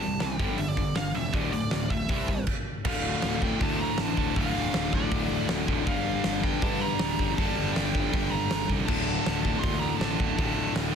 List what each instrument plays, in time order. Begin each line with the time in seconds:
Already playing: lead electric guitar A5
0.00 picked electric bass C2, overdriven electric guitar C3 G3, open hi-hat
0.20 picked electric bass C2, overdriven electric guitar C3 G3, lead electric guitar G5, snare, open hi-hat
0.39 picked electric bass G1, overdriven electric guitar G2 D3 G3, kick, open hi-hat
0.58 picked electric bass G1, overdriven electric guitar G2 D3, lead electric guitar E5, open hi-hat
0.68 lead electric guitar D5
0.77 overdriven electric guitar G2 D3, kick, open hi-hat
0.96 picked electric bass G1, overdriven electric guitar G2 D3, lead electric guitar F5, snare, open hi-hat
1.14 picked electric bass E1, overdriven electric guitar G2 D3, lead electric guitar E5, open hi-hat
1.33 picked electric bass D1, overdriven electric guitar D2 A2 D3, lead electric guitar D5, kick, open hi-hat
1.52 picked electric bass D1, overdriven electric guitar D2 A2, lead electric guitar D5, open hi-hat
1.71 picked electric bass D1, overdriven electric guitar D2 A2, snare, open hi-hat
1.90 picked electric bass D1, overdriven electric guitar D2 A2, lead electric guitar E5, kick, open hi-hat
2.09 picked electric bass C2, overdriven electric guitar C3 G3 C4, kick, open hi-hat
2.28 overdriven electric guitar C3 G3, kick, open hi-hat
2.47 kick, crash
2.85 picked electric bass D1, distorted electric guitar D2 A2 D3 A3, overdriven electric guitar D2 A2, lead electric guitar F5, kick, crash
2.89 overdriven electric guitar D3, distorted electric guitar F4
3.22 picked electric bass D1, snare, open hi-hat
3.42 distorted electric guitar D2 A2 D3 A3 F4, lead electric guitar G5, kick
3.60 overdriven electric guitar D2 A2 D3, picked electric bass D2, lead electric guitar A5, kick, open hi-hat
3.81 lead electric guitar A#5
3.98 picked electric bass A1, lead electric guitar A5, snare, open hi-hat
4.16 picked electric bass D1, distorted electric guitar D2 A2 D3, lead electric guitar A5, kick
4.35 picked electric bass D1, overdriven electric guitar D2 A2, distorted electric guitar D2 A2 D3 A3 F4, lead electric guitar F5, kick, open hi-hat
4.39 overdriven electric guitar D3
4.55 picked electric bass D1
4.74 picked electric bass D1, snare, open hi-hat
4.92 picked electric bass D1, distorted electric guitar D2 A2 D3 A3 F4, lead electric guitar D5, kick
5.10 picked electric bass D1, overdriven electric guitar D2 A2 D3, kick, open hi-hat
5.31 picked electric bass D1
5.49 picked electric bass D1, snare, open hi-hat
5.67 picked electric bass D1, distorted electric guitar D2 A2 D3, kick
5.84 picked electric bass G1, overdriven electric guitar G2 D3 G3, distorted electric guitar G2 D3 G3, lead electric guitar F5, kick, open hi-hat
5.89 distorted electric guitar A#3 D4 G4
6.24 picked electric bass G1, snare, open hi-hat
6.43 distorted electric guitar G2 D3 G3 A#3 D4 G4, lead electric guitar G5, kick
6.61 overdriven electric guitar G2 D3 G3, picked electric bass G2, lead electric guitar A5, kick, open hi-hat
6.81 lead electric guitar A#5
6.99 picked electric bass D1, snare, open hi-hat
7.19 picked electric bass G1, distorted electric guitar G2 D3 G3, kick
7.35 picked electric bass G1, overdriven electric guitar G2 D3, distorted electric guitar G2 D3 G3, lead electric guitar A5, kick, open hi-hat
7.40 overdriven electric guitar G3, distorted electric guitar A#3 D4 G4
7.58 picked electric bass G1
7.73 lead electric guitar G5, snare, open hi-hat
7.77 picked electric bass G1
7.93 picked electric bass G1, distorted electric guitar D3 G3 A#3 D4 G4, kick
7.98 distorted electric guitar G2
8.12 picked electric bass G1, overdriven electric guitar G2 D3, lead electric guitar G5, kick, open hi-hat
8.16 overdriven electric guitar G3
8.30 picked electric bass G1, lead electric guitar A#5
8.51 picked electric bass G1, snare, open hi-hat
8.69 picked electric bass C2, distorted electric guitar G2 D3 G3, kick
8.86 picked electric bass D1, distorted electric guitar D2 A2, overdriven electric guitar D2 A2, lead electric guitar A5, kick, crash
8.90 distorted electric guitar D3 A3 F4, overdriven electric guitar D3
9.26 picked electric bass D1, snare, open hi-hat
9.42 distorted electric guitar D3 A3 F4, lead electric guitar A5, kick
9.46 distorted electric guitar D2 A2
9.60 overdriven electric guitar D2, picked electric bass D2, lead electric guitar C6, kick, open hi-hat
9.64 overdriven electric guitar A2 D3
9.79 lead electric guitar A#5
9.97 picked electric bass A1, lead electric guitar A5
10.01 snare, open hi-hat
10.19 picked electric bass D1, distorted electric guitar D2 A2 D3, kick
10.36 picked electric bass D1, overdriven electric guitar D2 A2 D3, distorted electric guitar D2 A2 D3 A3, lead electric guitar A5, kick, open hi-hat
10.41 distorted electric guitar F4
10.56 picked electric bass D1
10.76 picked electric bass D1, snare, open hi-hat
10.91 lead electric guitar G5